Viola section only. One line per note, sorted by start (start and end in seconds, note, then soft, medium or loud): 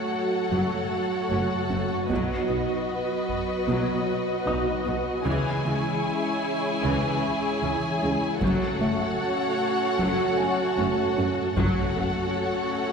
0.00 5.22 F#4 soft
0.53 0.89 F#3 soft
1.32 1.40 C#4 soft
1.72 1.80 A3 soft
2.10 2.47 F#3 medium
2.49 2.57 B3 soft
3.68 4.05 F#3 soft
4.47 4.55 D#4 soft
4.87 4.95 B3 soft
5.25 5.62 E3 medium
5.25 8.41 E4 medium
5.65 5.73 G#3 soft
6.84 7.21 E3 medium
7.63 7.71 C#4 soft
8.02 8.10 G#3 soft
8.42 8.79 F#3 medium
8.42 11.54 F#4 medium
8.81 8.89 A3 soft
10.00 10.37 F#3 medium
10.78 10.86 C#4 soft
11.18 11.26 A3 soft
11.58 11.94 F#3 medium
11.58 12.92 F#4 medium
11.97 12.05 A3 soft